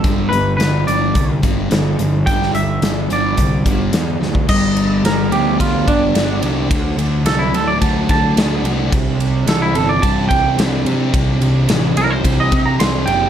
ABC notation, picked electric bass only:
X:1
M:4/4
L:1/8
Q:1/4=108
K:G
V:1 name="Picked electric bass" clef=bass
G,,, G,,, G,,, G,,, C,, G,,, G,,, G,,, | G,,, G,,, G,,, G,,, C,, G,,, E,, D,, | G,,,2 G,,, D,, D,, G,,, G,,, C,, | D,, D,, C,, D,, D,, D, D,, C,, |
C,,2 C,, G,,, G,, C,, C,, C, | C,, C,, A,,, C,, C,, C, C,, F,,, |]